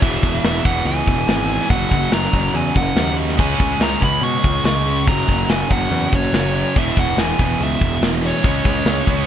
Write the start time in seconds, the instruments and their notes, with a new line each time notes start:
0.01 picked electric bass E1, distorted electric guitar E2 B2 E3, lead electric guitar E5, kick, open hi-hat
0.23 picked electric bass E1, kick, open hi-hat
0.44 picked electric bass E1, lead electric guitar E5, snare, open hi-hat
0.64 picked electric bass E1, distorted electric guitar E2 B2 E3, lead electric guitar F#5, kick, open hi-hat
0.85 picked electric bass C#2, lead electric guitar G#5, open hi-hat
1.07 picked electric bass E1, kick, open hi-hat
1.27 picked electric bass G#1, snare, open hi-hat
1.48 distorted electric guitar E2 B2 E3, open hi-hat
1.60 snare
1.68 picked electric bass F#1, distorted electric guitar F#2 C#3 F#3, lead electric guitar F#5, kick, open hi-hat
1.91 picked electric bass F#1, lead electric guitar F#5, kick, open hi-hat
2.11 picked electric bass F#1, lead electric guitar A#5, snare, open hi-hat
2.32 picked electric bass F#1, distorted electric guitar F#2 C#3 F#3, kick, open hi-hat
2.54 picked electric bass E2, lead electric guitar G#5, open hi-hat
2.76 picked electric bass F#1, lead electric guitar F#5, kick, open hi-hat
2.96 picked electric bass D#2, snare, open hi-hat
3.15 distorted electric guitar F#2 C#3 F#3, open hi-hat
3.29 snare
3.37 picked electric bass C#2, distorted electric guitar C#3 G#3 C#4, lead electric guitar G#5, kick, crash
3.60 picked electric bass C#2, kick, snare, open hi-hat
3.80 picked electric bass C#2, lead electric guitar A#5, snare, open hi-hat
4.01 picked electric bass C#2, distorted electric guitar C#3 G#3 C#4, lead electric guitar B5, kick, open hi-hat
4.22 picked electric bass B2, lead electric guitar C#6, open hi-hat
4.44 picked electric bass C#2, kick, open hi-hat
4.64 picked electric bass C#2, lead electric guitar C#6, snare, open hi-hat
4.85 distorted electric guitar C#3 G#3 C#4, open hi-hat
5.06 picked electric bass F#1, distorted electric guitar F#2 C#3 F#3, lead electric guitar A#5, kick, open hi-hat
5.28 picked electric bass F#1, kick, open hi-hat
5.48 picked electric bass F#1, lead electric guitar G#5, snare, open hi-hat
5.69 picked electric bass F#1, distorted electric guitar F#2 C#3 F#3, lead electric guitar F#5, kick, open hi-hat
5.90 picked electric bass E2, open hi-hat
6.13 picked electric bass F#1, lead electric guitar C#5, kick, open hi-hat
6.33 picked electric bass F#1, snare, open hi-hat
6.54 distorted electric guitar F#2 C#3 F#3, open hi-hat
6.75 picked electric bass E1, distorted electric guitar E2 B2 E3, lead electric guitar E5, kick, open hi-hat
6.97 picked electric bass E1, lead electric guitar F#5, kick, open hi-hat
7.17 picked electric bass E1, lead electric guitar G#5, snare, open hi-hat
7.39 picked electric bass E1, distorted electric guitar E2 B2 E3, lead electric guitar G#5, kick, open hi-hat
7.60 picked electric bass C#2, lead electric guitar E5, open hi-hat
7.81 picked electric bass E1, kick, open hi-hat
8.01 picked electric bass E1, snare, open hi-hat
8.22 distorted electric guitar E2 B2 E3, open hi-hat
8.26 lead electric guitar C#5
8.34 snare
8.43 picked electric bass C#2, distorted electric guitar C#3 G#3 C#4, kick, open hi-hat
8.65 picked electric bass C#2, kick, snare, open hi-hat
8.85 picked electric bass C#2, snare, open hi-hat
9.06 picked electric bass C#2, distorted electric guitar C#3 G#3 C#4, kick, open hi-hat